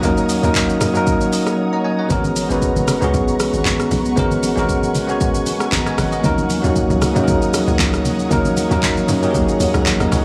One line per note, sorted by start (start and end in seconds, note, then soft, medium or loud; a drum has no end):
0.00 0.40 D#2 loud
0.00 0.42 F#3 medium
0.00 0.02 A#3 medium
0.00 0.34 A#3 medium
0.00 0.03 C#4 medium
0.00 0.35 C#4 medium
0.00 0.04 D#4 medium
0.00 0.05 A#4 medium
0.00 1.99 C#5 loud
0.00 2.06 C#5 medium
0.00 2.06 F#5 medium
0.00 2.06 A#5 medium
0.00 2.06 D#6 medium
0.00 kick loud
0.00 shaker medium
0.04 0.35 D#4 medium
0.04 0.36 A#4 loud
0.17 shaker medium
0.29 open hi-hat medium
0.29 shaker loud
0.42 0.78 D#2 loud
0.42 0.83 F#3 medium
0.42 0.83 A#3 medium
0.42 0.84 C#4 medium
0.42 0.84 D#4 medium
0.42 0.85 A#4 medium
0.42 shaker medium
0.55 kick medium
0.55 clap loud
0.55 shaker medium
0.69 shaker medium
0.81 1.04 F#2 medium
0.81 cross-stick loud
0.81 open hi-hat medium
0.81 shaker loud
0.94 1.77 F#3 medium
0.94 1.77 A#3 medium
0.94 1.77 C#4 medium
0.94 1.78 D#4 medium
0.94 1.78 A#4 loud
0.94 shaker medium
1.07 kick loud
1.07 shaker medium
1.21 shaker medium
1.33 open hi-hat medium
1.33 shaker loud
1.47 cross-stick medium
1.47 shaker medium
1.73 1.84 D#5 medium
1.73 1.84 A#5 medium
1.84 1.98 D#5 medium
1.84 1.98 G#5 medium
1.99 2.24 C#5 medium
1.99 2.23 F#5 medium
2.09 2.47 G#1 loud
2.09 2.41 G#3 medium
2.09 2.41 B3 medium
2.09 6.20 B3 medium
2.09 2.42 C#4 medium
2.09 2.42 F#4 medium
2.09 2.43 A#4 medium
2.09 10.25 F#5 medium
2.09 4.15 A#5 medium
2.09 6.20 C#6 medium
2.09 kick loud
2.09 low conga medium
2.09 shaker medium
2.24 high conga medium
2.24 shaker medium
2.36 open hi-hat medium
2.36 high conga medium
2.36 shaker loud
2.49 2.74 G#1 loud
2.49 2.90 G#3 medium
2.49 2.90 B3 medium
2.49 2.91 C#4 medium
2.49 2.91 F#4 medium
2.49 2.92 B4 medium
2.49 shaker medium
2.62 kick medium
2.62 shaker medium
2.76 3.00 F#1 medium
2.76 high conga medium
2.76 shaker medium
2.88 cross-stick loud
2.88 open hi-hat medium
2.88 low conga medium
2.88 shaker medium
3.00 3.13 C#2 medium
3.00 3.83 G#3 medium
3.00 3.84 B3 medium
3.00 3.84 C#4 medium
3.00 3.85 F#4 medium
3.00 3.85 G#4 loud
3.00 shaker medium
3.14 3.50 B1 loud
3.14 kick loud
3.14 shaker medium
3.28 shaker medium
3.40 cross-stick loud
3.40 open hi-hat medium
3.40 high conga medium
3.40 shaker loud
3.54 3.64 G#1 medium
3.54 shaker medium
3.65 3.89 G#1 loud
3.65 kick medium
3.65 clap medium
3.65 high conga medium
3.65 shaker medium
3.80 cross-stick medium
3.80 shaker medium
3.91 4.15 B1 medium
3.91 open hi-hat soft
3.91 high conga medium
3.91 low conga medium
3.91 shaker medium
4.05 shaker medium
4.16 4.54 G#1 loud
4.16 4.48 G#3 medium
4.16 4.48 B3 medium
4.16 4.49 C#4 medium
4.16 4.49 F#4 medium
4.16 4.50 A#4 loud
4.16 6.22 G#5 medium
4.16 kick loud
4.16 low conga medium
4.16 shaker medium
4.31 high conga medium
4.31 shaker medium
4.43 open hi-hat medium
4.43 high conga medium
4.43 shaker loud
4.56 4.96 G#1 loud
4.56 4.97 G#3 medium
4.56 4.97 B3 medium
4.56 4.98 C#4 medium
4.56 4.98 F#4 medium
4.56 4.98 A#4 loud
4.56 shaker medium
4.69 kick medium
4.69 shaker medium
4.83 high conga medium
4.83 shaker medium
4.95 5.18 B1 loud
4.95 open hi-hat medium
4.95 low conga medium
4.95 shaker medium
5.07 5.90 G#3 medium
5.07 5.91 B3 medium
5.07 5.91 C#4 medium
5.07 5.92 F#4 medium
5.07 5.73 C#5 loud
5.07 shaker medium
5.21 kick loud
5.21 shaker medium
5.35 shaker medium
5.46 open hi-hat medium
5.46 high conga medium
5.46 shaker loud
5.60 cross-stick loud
5.60 shaker medium
5.72 5.96 G#1 medium
5.72 5.86 D#5 medium
5.72 5.86 A#5 medium
5.72 kick loud
5.72 clap medium
5.72 high conga medium
5.72 shaker medium
5.86 5.98 D#5 medium
5.86 5.98 G#5 medium
5.86 cross-stick medium
5.86 shaker medium
5.98 6.22 G#1 loud
5.98 6.12 C#5 medium
5.98 6.12 F#5 medium
5.98 cross-stick loud
5.98 open hi-hat soft
5.98 high conga medium
5.98 low conga medium
5.98 shaker medium
6.12 6.25 A#4 medium
6.12 6.37 D#5 medium
6.12 shaker medium
6.22 6.61 D#2 loud
6.22 6.55 F#3 medium
6.22 6.55 A#3 medium
6.22 6.56 C#4 medium
6.22 6.56 D#4 medium
6.22 6.56 A#4 loud
6.22 10.25 C#5 medium
6.22 10.25 A#5 medium
6.22 10.25 D#6 medium
6.22 kick loud
6.22 low conga medium
6.22 shaker medium
6.38 high conga medium
6.38 shaker medium
6.50 open hi-hat medium
6.50 high conga medium
6.50 shaker loud
6.62 6.88 D#2 loud
6.62 7.04 F#3 medium
6.62 7.04 A#3 medium
6.62 7.04 C#4 medium
6.62 7.05 D#4 medium
6.62 7.05 F#4 medium
6.62 shaker medium
6.76 kick medium
6.76 shaker medium
6.90 7.14 C#2 medium
6.90 high conga medium
6.90 shaker medium
7.02 cross-stick loud
7.02 open hi-hat medium
7.02 low conga medium
7.02 shaker medium
7.14 7.26 F#2 medium
7.14 7.97 F#3 medium
7.14 7.98 A#3 medium
7.14 7.98 C#4 medium
7.14 7.98 D#4 medium
7.14 7.22 G#4 medium
7.14 shaker medium
7.24 8.02 A#4 medium
7.24 shaker medium
7.28 7.64 D#2 medium
7.28 kick loud
7.42 shaker medium
7.54 cross-stick loud
7.54 open hi-hat medium
7.54 high conga medium
7.54 shaker loud
7.68 7.78 C#2 loud
7.68 shaker medium
7.79 8.06 C#2 loud
7.79 kick loud
7.79 clap medium
7.79 high conga medium
7.79 shaker medium
7.94 cross-stick medium
7.94 shaker medium
8.05 8.29 D#2 loud
8.05 open hi-hat soft
8.05 high conga medium
8.05 low conga medium
8.05 shaker medium
8.19 shaker medium
8.29 8.68 D#2 loud
8.29 8.62 F#3 medium
8.29 8.62 A#3 medium
8.29 8.62 C#4 medium
8.29 8.63 D#4 medium
8.29 8.63 A#4 loud
8.29 kick loud
8.29 low conga medium
8.29 shaker medium
8.45 high conga medium
8.45 shaker medium
8.57 open hi-hat medium
8.57 high conga medium
8.57 shaker loud
8.69 9.05 D#2 loud
8.69 9.10 F#3 medium
8.69 9.11 A#3 medium
8.69 9.11 C#4 medium
8.69 9.12 D#4 medium
8.69 9.12 A#4 loud
8.69 shaker medium
8.83 kick medium
8.83 clap loud
8.83 shaker medium
8.97 high conga medium
8.97 shaker medium
9.08 9.32 F#2 loud
9.08 open hi-hat medium
9.08 low conga medium
9.08 shaker medium
9.21 10.04 F#3 medium
9.21 10.04 A#3 medium
9.21 10.05 C#4 medium
9.21 9.86 D#4 medium
9.21 9.29 G4 medium
9.21 shaker medium
9.31 9.47 D#2 loud
9.31 9.90 G#4 loud
9.31 shaker medium
9.35 kick loud
9.48 shaker medium
9.60 9.73 D#2 loud
9.60 open hi-hat medium
9.60 high conga medium
9.60 shaker loud
9.74 9.85 C#2 loud
9.74 cross-stick loud
9.74 shaker soft
9.86 10.00 C#5 medium
9.86 10.00 F#5 medium
9.86 kick medium
9.86 clap medium
9.86 high conga medium
9.86 shaker medium
10.00 10.11 D#2 medium
10.00 10.12 A#4 medium
10.00 10.11 D#5 medium
10.00 cross-stick medium
10.00 shaker medium
10.12 10.25 C#2 loud
10.12 10.25 G#4 medium
10.12 10.25 C#5 medium
10.12 cross-stick loud
10.12 open hi-hat soft
10.12 high conga medium
10.12 low conga medium
10.12 shaker medium